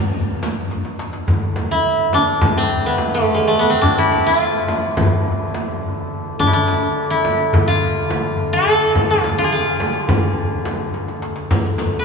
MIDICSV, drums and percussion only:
0, 0, Header, 1, 4, 480
1, 0, Start_track
1, 0, Tempo, 568720
1, 1079, Time_signature, 9, 3, 24, 8
1, 10169, End_track
2, 0, Start_track
2, 0, Title_t, "Darbuka"
2, 359, Note_on_c, 9, 63, 61
2, 444, Note_off_c, 9, 63, 0
2, 600, Note_on_c, 9, 63, 56
2, 685, Note_off_c, 9, 63, 0
2, 716, Note_on_c, 9, 62, 62
2, 800, Note_off_c, 9, 62, 0
2, 837, Note_on_c, 9, 63, 73
2, 922, Note_off_c, 9, 63, 0
2, 954, Note_on_c, 9, 62, 76
2, 1038, Note_off_c, 9, 62, 0
2, 1080, Note_on_c, 9, 64, 75
2, 1164, Note_off_c, 9, 64, 0
2, 1317, Note_on_c, 9, 63, 60
2, 1401, Note_off_c, 9, 63, 0
2, 1799, Note_on_c, 9, 63, 63
2, 1883, Note_off_c, 9, 63, 0
2, 2038, Note_on_c, 9, 64, 73
2, 2122, Note_off_c, 9, 64, 0
2, 2516, Note_on_c, 9, 63, 67
2, 2601, Note_off_c, 9, 63, 0
2, 3235, Note_on_c, 9, 64, 71
2, 3320, Note_off_c, 9, 64, 0
2, 3478, Note_on_c, 9, 63, 66
2, 3562, Note_off_c, 9, 63, 0
2, 3959, Note_on_c, 9, 63, 63
2, 4044, Note_off_c, 9, 63, 0
2, 4200, Note_on_c, 9, 64, 87
2, 4285, Note_off_c, 9, 64, 0
2, 4678, Note_on_c, 9, 63, 62
2, 4763, Note_off_c, 9, 63, 0
2, 5397, Note_on_c, 9, 64, 78
2, 5482, Note_off_c, 9, 64, 0
2, 5634, Note_on_c, 9, 63, 62
2, 5719, Note_off_c, 9, 63, 0
2, 6117, Note_on_c, 9, 63, 55
2, 6201, Note_off_c, 9, 63, 0
2, 6354, Note_on_c, 9, 64, 89
2, 6439, Note_off_c, 9, 64, 0
2, 6837, Note_on_c, 9, 63, 59
2, 6922, Note_off_c, 9, 63, 0
2, 7557, Note_on_c, 9, 64, 75
2, 7641, Note_off_c, 9, 64, 0
2, 7676, Note_on_c, 9, 62, 23
2, 7761, Note_off_c, 9, 62, 0
2, 7798, Note_on_c, 9, 63, 70
2, 7882, Note_off_c, 9, 63, 0
2, 8277, Note_on_c, 9, 63, 58
2, 8361, Note_off_c, 9, 63, 0
2, 8511, Note_on_c, 9, 64, 89
2, 8596, Note_off_c, 9, 64, 0
2, 8992, Note_on_c, 9, 63, 66
2, 9076, Note_off_c, 9, 63, 0
2, 9233, Note_on_c, 9, 63, 54
2, 9317, Note_off_c, 9, 63, 0
2, 9354, Note_on_c, 9, 62, 60
2, 9438, Note_off_c, 9, 62, 0
2, 9472, Note_on_c, 9, 63, 72
2, 9556, Note_off_c, 9, 63, 0
2, 9586, Note_on_c, 9, 62, 75
2, 9670, Note_off_c, 9, 62, 0
2, 9711, Note_on_c, 9, 64, 88
2, 9796, Note_off_c, 9, 64, 0
2, 9950, Note_on_c, 9, 63, 72
2, 10035, Note_off_c, 9, 63, 0
2, 10169, End_track
3, 0, Start_track
3, 0, Title_t, "Frame drum"
3, 361, Note_on_c, 9, 64, 65
3, 445, Note_off_c, 9, 64, 0
3, 1078, Note_on_c, 9, 64, 75
3, 1162, Note_off_c, 9, 64, 0
3, 1316, Note_on_c, 9, 64, 58
3, 1401, Note_off_c, 9, 64, 0
3, 1798, Note_on_c, 9, 64, 64
3, 1882, Note_off_c, 9, 64, 0
3, 2038, Note_on_c, 9, 64, 85
3, 2122, Note_off_c, 9, 64, 0
3, 2518, Note_on_c, 9, 64, 65
3, 2602, Note_off_c, 9, 64, 0
3, 3234, Note_on_c, 9, 64, 65
3, 3318, Note_off_c, 9, 64, 0
3, 3476, Note_on_c, 9, 64, 47
3, 3561, Note_off_c, 9, 64, 0
3, 3954, Note_on_c, 9, 64, 63
3, 4038, Note_off_c, 9, 64, 0
3, 4194, Note_on_c, 9, 64, 83
3, 4279, Note_off_c, 9, 64, 0
3, 4681, Note_on_c, 9, 64, 62
3, 4765, Note_off_c, 9, 64, 0
3, 5401, Note_on_c, 9, 64, 69
3, 5485, Note_off_c, 9, 64, 0
3, 5642, Note_on_c, 9, 64, 51
3, 5726, Note_off_c, 9, 64, 0
3, 6117, Note_on_c, 9, 64, 66
3, 6202, Note_off_c, 9, 64, 0
3, 6361, Note_on_c, 9, 64, 77
3, 6445, Note_off_c, 9, 64, 0
3, 6842, Note_on_c, 9, 64, 68
3, 6927, Note_off_c, 9, 64, 0
3, 7557, Note_on_c, 9, 64, 73
3, 7641, Note_off_c, 9, 64, 0
3, 7800, Note_on_c, 9, 64, 59
3, 7884, Note_off_c, 9, 64, 0
3, 8273, Note_on_c, 9, 64, 71
3, 8358, Note_off_c, 9, 64, 0
3, 8513, Note_on_c, 9, 64, 80
3, 8598, Note_off_c, 9, 64, 0
3, 8992, Note_on_c, 9, 64, 62
3, 9077, Note_off_c, 9, 64, 0
3, 9712, Note_on_c, 9, 64, 77
3, 9796, Note_off_c, 9, 64, 0
3, 9945, Note_on_c, 9, 64, 54
3, 10029, Note_off_c, 9, 64, 0
3, 10169, End_track
4, 0, Start_track
4, 0, Title_t, "Riq"
4, 362, Note_on_c, 9, 54, 47
4, 447, Note_off_c, 9, 54, 0
4, 847, Note_on_c, 9, 54, 17
4, 931, Note_off_c, 9, 54, 0
4, 9712, Note_on_c, 9, 54, 50
4, 9797, Note_off_c, 9, 54, 0
4, 9831, Note_on_c, 9, 54, 17
4, 9916, Note_off_c, 9, 54, 0
4, 9949, Note_on_c, 9, 54, 45
4, 10034, Note_off_c, 9, 54, 0
4, 10169, End_track
0, 0, End_of_file